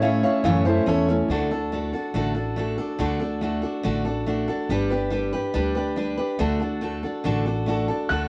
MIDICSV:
0, 0, Header, 1, 5, 480
1, 0, Start_track
1, 0, Key_signature, 2, "major"
1, 0, Tempo, 425834
1, 1456, Time_signature, 4, 2, 24, 8
1, 9333, End_track
2, 0, Start_track
2, 0, Title_t, "Pedal steel guitar"
2, 0, Program_c, 0, 26
2, 0, Note_on_c, 0, 73, 69
2, 0, Note_on_c, 0, 76, 90
2, 939, Note_off_c, 0, 73, 0
2, 939, Note_off_c, 0, 76, 0
2, 9333, End_track
3, 0, Start_track
3, 0, Title_t, "Upright piano"
3, 0, Program_c, 1, 0
3, 15, Note_on_c, 1, 73, 80
3, 23, Note_on_c, 1, 77, 89
3, 233, Note_off_c, 1, 73, 0
3, 240, Note_off_c, 1, 77, 0
3, 250, Note_on_c, 1, 73, 71
3, 257, Note_on_c, 1, 77, 80
3, 472, Note_off_c, 1, 73, 0
3, 479, Note_off_c, 1, 77, 0
3, 489, Note_on_c, 1, 73, 77
3, 496, Note_on_c, 1, 77, 87
3, 716, Note_off_c, 1, 73, 0
3, 729, Note_off_c, 1, 77, 0
3, 730, Note_on_c, 1, 69, 75
3, 738, Note_on_c, 1, 72, 89
3, 956, Note_off_c, 1, 69, 0
3, 970, Note_off_c, 1, 72, 0
3, 986, Note_on_c, 1, 69, 88
3, 1330, Note_off_c, 1, 69, 0
3, 9121, Note_on_c, 1, 90, 86
3, 9333, Note_off_c, 1, 90, 0
3, 9333, End_track
4, 0, Start_track
4, 0, Title_t, "Steel-string acoustic guitar"
4, 0, Program_c, 2, 25
4, 20, Note_on_c, 2, 57, 70
4, 29, Note_on_c, 2, 61, 72
4, 37, Note_on_c, 2, 64, 77
4, 52, Note_on_c, 2, 73, 80
4, 247, Note_off_c, 2, 73, 0
4, 258, Note_off_c, 2, 64, 0
4, 259, Note_off_c, 2, 57, 0
4, 261, Note_on_c, 2, 73, 60
4, 263, Note_off_c, 2, 61, 0
4, 272, Note_on_c, 2, 64, 59
4, 281, Note_on_c, 2, 61, 58
4, 291, Note_on_c, 2, 57, 52
4, 493, Note_off_c, 2, 57, 0
4, 493, Note_on_c, 2, 45, 79
4, 499, Note_off_c, 2, 61, 0
4, 499, Note_off_c, 2, 73, 0
4, 501, Note_off_c, 2, 64, 0
4, 501, Note_on_c, 2, 52, 84
4, 506, Note_on_c, 2, 57, 88
4, 513, Note_on_c, 2, 61, 87
4, 514, Note_on_c, 2, 64, 95
4, 518, Note_on_c, 2, 73, 106
4, 717, Note_off_c, 2, 73, 0
4, 730, Note_on_c, 2, 73, 60
4, 731, Note_off_c, 2, 64, 0
4, 735, Note_off_c, 2, 45, 0
4, 739, Note_off_c, 2, 52, 0
4, 740, Note_off_c, 2, 61, 0
4, 742, Note_off_c, 2, 57, 0
4, 745, Note_on_c, 2, 64, 58
4, 753, Note_on_c, 2, 61, 55
4, 765, Note_on_c, 2, 57, 51
4, 959, Note_off_c, 2, 57, 0
4, 969, Note_off_c, 2, 61, 0
4, 972, Note_on_c, 2, 57, 67
4, 973, Note_off_c, 2, 73, 0
4, 981, Note_off_c, 2, 64, 0
4, 982, Note_on_c, 2, 61, 79
4, 997, Note_on_c, 2, 64, 75
4, 1002, Note_on_c, 2, 73, 79
4, 1208, Note_off_c, 2, 73, 0
4, 1214, Note_off_c, 2, 57, 0
4, 1219, Note_off_c, 2, 61, 0
4, 1221, Note_on_c, 2, 73, 62
4, 1222, Note_off_c, 2, 64, 0
4, 1235, Note_on_c, 2, 64, 67
4, 1243, Note_on_c, 2, 61, 63
4, 1250, Note_on_c, 2, 57, 52
4, 1458, Note_off_c, 2, 57, 0
4, 1458, Note_off_c, 2, 73, 0
4, 1463, Note_on_c, 2, 50, 80
4, 1465, Note_off_c, 2, 64, 0
4, 1469, Note_off_c, 2, 61, 0
4, 1472, Note_on_c, 2, 57, 73
4, 1477, Note_on_c, 2, 62, 86
4, 1479, Note_on_c, 2, 66, 84
4, 1485, Note_on_c, 2, 69, 85
4, 1690, Note_off_c, 2, 69, 0
4, 1699, Note_off_c, 2, 50, 0
4, 1704, Note_off_c, 2, 57, 0
4, 1704, Note_on_c, 2, 69, 57
4, 1706, Note_off_c, 2, 62, 0
4, 1707, Note_off_c, 2, 66, 0
4, 1722, Note_on_c, 2, 66, 45
4, 1734, Note_on_c, 2, 62, 45
4, 1937, Note_off_c, 2, 62, 0
4, 1940, Note_off_c, 2, 69, 0
4, 1940, Note_on_c, 2, 57, 55
4, 1948, Note_off_c, 2, 66, 0
4, 1951, Note_on_c, 2, 62, 61
4, 1963, Note_on_c, 2, 66, 62
4, 1974, Note_on_c, 2, 69, 59
4, 2163, Note_off_c, 2, 69, 0
4, 2177, Note_off_c, 2, 57, 0
4, 2177, Note_on_c, 2, 69, 51
4, 2180, Note_off_c, 2, 66, 0
4, 2183, Note_off_c, 2, 62, 0
4, 2194, Note_on_c, 2, 66, 46
4, 2206, Note_on_c, 2, 62, 44
4, 2409, Note_off_c, 2, 62, 0
4, 2411, Note_on_c, 2, 50, 73
4, 2416, Note_off_c, 2, 69, 0
4, 2417, Note_on_c, 2, 57, 69
4, 2419, Note_off_c, 2, 66, 0
4, 2422, Note_on_c, 2, 62, 78
4, 2432, Note_on_c, 2, 66, 84
4, 2436, Note_on_c, 2, 69, 74
4, 2629, Note_off_c, 2, 69, 0
4, 2642, Note_on_c, 2, 69, 50
4, 2646, Note_off_c, 2, 66, 0
4, 2653, Note_off_c, 2, 50, 0
4, 2656, Note_off_c, 2, 57, 0
4, 2659, Note_off_c, 2, 62, 0
4, 2660, Note_on_c, 2, 66, 52
4, 2675, Note_on_c, 2, 62, 38
4, 2886, Note_off_c, 2, 62, 0
4, 2886, Note_on_c, 2, 57, 59
4, 2889, Note_off_c, 2, 69, 0
4, 2895, Note_off_c, 2, 66, 0
4, 2899, Note_on_c, 2, 62, 63
4, 2908, Note_on_c, 2, 66, 66
4, 2920, Note_on_c, 2, 69, 64
4, 3115, Note_off_c, 2, 69, 0
4, 3129, Note_on_c, 2, 69, 53
4, 3130, Note_off_c, 2, 57, 0
4, 3132, Note_off_c, 2, 66, 0
4, 3137, Note_off_c, 2, 62, 0
4, 3146, Note_on_c, 2, 66, 51
4, 3157, Note_on_c, 2, 62, 48
4, 3364, Note_off_c, 2, 62, 0
4, 3364, Note_on_c, 2, 50, 73
4, 3370, Note_off_c, 2, 66, 0
4, 3372, Note_off_c, 2, 69, 0
4, 3374, Note_on_c, 2, 57, 79
4, 3378, Note_on_c, 2, 62, 87
4, 3384, Note_on_c, 2, 66, 80
4, 3387, Note_on_c, 2, 69, 77
4, 3587, Note_off_c, 2, 69, 0
4, 3601, Note_on_c, 2, 69, 56
4, 3604, Note_off_c, 2, 66, 0
4, 3609, Note_off_c, 2, 50, 0
4, 3614, Note_off_c, 2, 57, 0
4, 3616, Note_off_c, 2, 62, 0
4, 3617, Note_on_c, 2, 66, 51
4, 3632, Note_on_c, 2, 62, 46
4, 3842, Note_on_c, 2, 57, 60
4, 3843, Note_off_c, 2, 62, 0
4, 3848, Note_off_c, 2, 69, 0
4, 3853, Note_off_c, 2, 66, 0
4, 3857, Note_on_c, 2, 62, 59
4, 3867, Note_on_c, 2, 66, 70
4, 3874, Note_on_c, 2, 69, 63
4, 4061, Note_off_c, 2, 69, 0
4, 4075, Note_on_c, 2, 69, 49
4, 4077, Note_off_c, 2, 66, 0
4, 4089, Note_off_c, 2, 57, 0
4, 4090, Note_on_c, 2, 66, 50
4, 4092, Note_off_c, 2, 62, 0
4, 4105, Note_on_c, 2, 62, 45
4, 4318, Note_on_c, 2, 50, 81
4, 4321, Note_off_c, 2, 62, 0
4, 4322, Note_off_c, 2, 66, 0
4, 4325, Note_off_c, 2, 69, 0
4, 4329, Note_on_c, 2, 57, 78
4, 4334, Note_on_c, 2, 62, 77
4, 4336, Note_on_c, 2, 66, 79
4, 4341, Note_on_c, 2, 69, 82
4, 4546, Note_off_c, 2, 69, 0
4, 4560, Note_on_c, 2, 69, 50
4, 4564, Note_off_c, 2, 66, 0
4, 4567, Note_off_c, 2, 50, 0
4, 4572, Note_off_c, 2, 57, 0
4, 4575, Note_off_c, 2, 62, 0
4, 4578, Note_on_c, 2, 66, 44
4, 4590, Note_on_c, 2, 62, 47
4, 4803, Note_off_c, 2, 62, 0
4, 4804, Note_on_c, 2, 57, 59
4, 4808, Note_off_c, 2, 69, 0
4, 4817, Note_off_c, 2, 66, 0
4, 4817, Note_on_c, 2, 62, 60
4, 4829, Note_on_c, 2, 66, 67
4, 4834, Note_on_c, 2, 69, 62
4, 5033, Note_off_c, 2, 69, 0
4, 5047, Note_on_c, 2, 69, 55
4, 5049, Note_off_c, 2, 66, 0
4, 5050, Note_off_c, 2, 57, 0
4, 5056, Note_off_c, 2, 62, 0
4, 5062, Note_on_c, 2, 66, 51
4, 5073, Note_on_c, 2, 62, 47
4, 5289, Note_off_c, 2, 62, 0
4, 5291, Note_off_c, 2, 69, 0
4, 5296, Note_on_c, 2, 55, 74
4, 5299, Note_off_c, 2, 66, 0
4, 5303, Note_on_c, 2, 62, 81
4, 5310, Note_on_c, 2, 67, 83
4, 5313, Note_on_c, 2, 71, 81
4, 5511, Note_off_c, 2, 71, 0
4, 5524, Note_on_c, 2, 71, 55
4, 5528, Note_off_c, 2, 67, 0
4, 5536, Note_off_c, 2, 55, 0
4, 5539, Note_off_c, 2, 62, 0
4, 5542, Note_on_c, 2, 67, 56
4, 5555, Note_on_c, 2, 62, 48
4, 5749, Note_off_c, 2, 62, 0
4, 5754, Note_on_c, 2, 55, 64
4, 5761, Note_off_c, 2, 67, 0
4, 5763, Note_on_c, 2, 62, 58
4, 5770, Note_off_c, 2, 71, 0
4, 5775, Note_on_c, 2, 67, 64
4, 5785, Note_on_c, 2, 71, 63
4, 5991, Note_off_c, 2, 71, 0
4, 6004, Note_on_c, 2, 71, 55
4, 6005, Note_off_c, 2, 55, 0
4, 6005, Note_off_c, 2, 67, 0
4, 6009, Note_off_c, 2, 62, 0
4, 6019, Note_on_c, 2, 67, 53
4, 6031, Note_on_c, 2, 62, 48
4, 6240, Note_off_c, 2, 62, 0
4, 6243, Note_on_c, 2, 55, 80
4, 6246, Note_off_c, 2, 67, 0
4, 6250, Note_off_c, 2, 71, 0
4, 6254, Note_on_c, 2, 62, 74
4, 6260, Note_on_c, 2, 67, 80
4, 6264, Note_on_c, 2, 71, 85
4, 6468, Note_off_c, 2, 71, 0
4, 6482, Note_on_c, 2, 71, 55
4, 6488, Note_off_c, 2, 67, 0
4, 6490, Note_off_c, 2, 55, 0
4, 6495, Note_off_c, 2, 62, 0
4, 6501, Note_on_c, 2, 67, 53
4, 6517, Note_on_c, 2, 62, 45
4, 6720, Note_off_c, 2, 62, 0
4, 6720, Note_on_c, 2, 55, 59
4, 6725, Note_off_c, 2, 67, 0
4, 6729, Note_off_c, 2, 71, 0
4, 6734, Note_on_c, 2, 62, 64
4, 6739, Note_on_c, 2, 67, 60
4, 6751, Note_on_c, 2, 71, 69
4, 6949, Note_off_c, 2, 71, 0
4, 6962, Note_on_c, 2, 71, 61
4, 6968, Note_off_c, 2, 55, 0
4, 6968, Note_off_c, 2, 67, 0
4, 6975, Note_off_c, 2, 62, 0
4, 6981, Note_on_c, 2, 67, 51
4, 6992, Note_on_c, 2, 62, 46
4, 7202, Note_off_c, 2, 62, 0
4, 7202, Note_on_c, 2, 50, 86
4, 7208, Note_on_c, 2, 57, 75
4, 7210, Note_off_c, 2, 71, 0
4, 7216, Note_on_c, 2, 62, 83
4, 7218, Note_off_c, 2, 67, 0
4, 7222, Note_on_c, 2, 66, 81
4, 7223, Note_on_c, 2, 69, 84
4, 7425, Note_off_c, 2, 69, 0
4, 7438, Note_on_c, 2, 69, 52
4, 7446, Note_off_c, 2, 66, 0
4, 7450, Note_off_c, 2, 50, 0
4, 7452, Note_off_c, 2, 57, 0
4, 7456, Note_off_c, 2, 62, 0
4, 7460, Note_on_c, 2, 66, 53
4, 7471, Note_on_c, 2, 62, 46
4, 7675, Note_off_c, 2, 62, 0
4, 7680, Note_on_c, 2, 57, 62
4, 7686, Note_off_c, 2, 66, 0
4, 7688, Note_off_c, 2, 69, 0
4, 7689, Note_on_c, 2, 62, 59
4, 7699, Note_on_c, 2, 66, 61
4, 7709, Note_on_c, 2, 69, 65
4, 7911, Note_off_c, 2, 69, 0
4, 7925, Note_on_c, 2, 69, 57
4, 7929, Note_off_c, 2, 57, 0
4, 7930, Note_off_c, 2, 66, 0
4, 7933, Note_off_c, 2, 62, 0
4, 7943, Note_on_c, 2, 66, 47
4, 7959, Note_on_c, 2, 62, 44
4, 8161, Note_on_c, 2, 50, 74
4, 8163, Note_off_c, 2, 62, 0
4, 8166, Note_off_c, 2, 66, 0
4, 8171, Note_off_c, 2, 69, 0
4, 8171, Note_on_c, 2, 57, 78
4, 8176, Note_on_c, 2, 62, 81
4, 8179, Note_on_c, 2, 66, 77
4, 8184, Note_on_c, 2, 69, 79
4, 8392, Note_off_c, 2, 69, 0
4, 8406, Note_on_c, 2, 69, 49
4, 8409, Note_off_c, 2, 50, 0
4, 8410, Note_off_c, 2, 66, 0
4, 8414, Note_off_c, 2, 57, 0
4, 8417, Note_off_c, 2, 62, 0
4, 8424, Note_on_c, 2, 66, 46
4, 8437, Note_on_c, 2, 62, 39
4, 8637, Note_on_c, 2, 57, 59
4, 8640, Note_off_c, 2, 62, 0
4, 8649, Note_off_c, 2, 66, 0
4, 8652, Note_off_c, 2, 69, 0
4, 8653, Note_on_c, 2, 62, 62
4, 8663, Note_on_c, 2, 66, 65
4, 8673, Note_on_c, 2, 69, 68
4, 8871, Note_off_c, 2, 69, 0
4, 8884, Note_on_c, 2, 69, 55
4, 8887, Note_off_c, 2, 66, 0
4, 8888, Note_off_c, 2, 57, 0
4, 8896, Note_off_c, 2, 62, 0
4, 8901, Note_on_c, 2, 66, 53
4, 8911, Note_on_c, 2, 62, 47
4, 9121, Note_off_c, 2, 62, 0
4, 9126, Note_on_c, 2, 50, 60
4, 9130, Note_off_c, 2, 66, 0
4, 9132, Note_off_c, 2, 69, 0
4, 9134, Note_on_c, 2, 57, 65
4, 9134, Note_on_c, 2, 62, 67
4, 9144, Note_on_c, 2, 66, 70
4, 9149, Note_on_c, 2, 69, 77
4, 9333, Note_off_c, 2, 50, 0
4, 9333, Note_off_c, 2, 57, 0
4, 9333, Note_off_c, 2, 62, 0
4, 9333, Note_off_c, 2, 66, 0
4, 9333, Note_off_c, 2, 69, 0
4, 9333, End_track
5, 0, Start_track
5, 0, Title_t, "Upright bass"
5, 0, Program_c, 3, 32
5, 0, Note_on_c, 3, 45, 96
5, 246, Note_off_c, 3, 45, 0
5, 492, Note_on_c, 3, 42, 83
5, 901, Note_off_c, 3, 42, 0
5, 972, Note_on_c, 3, 40, 83
5, 1381, Note_off_c, 3, 40, 0
5, 1448, Note_on_c, 3, 38, 79
5, 2158, Note_off_c, 3, 38, 0
5, 2410, Note_on_c, 3, 33, 73
5, 3120, Note_off_c, 3, 33, 0
5, 3370, Note_on_c, 3, 38, 80
5, 4080, Note_off_c, 3, 38, 0
5, 4330, Note_on_c, 3, 33, 68
5, 5040, Note_off_c, 3, 33, 0
5, 5288, Note_on_c, 3, 31, 78
5, 5999, Note_off_c, 3, 31, 0
5, 6254, Note_on_c, 3, 38, 72
5, 6963, Note_off_c, 3, 38, 0
5, 7211, Note_on_c, 3, 38, 84
5, 7922, Note_off_c, 3, 38, 0
5, 8179, Note_on_c, 3, 33, 70
5, 8887, Note_off_c, 3, 33, 0
5, 9129, Note_on_c, 3, 38, 76
5, 9333, Note_off_c, 3, 38, 0
5, 9333, End_track
0, 0, End_of_file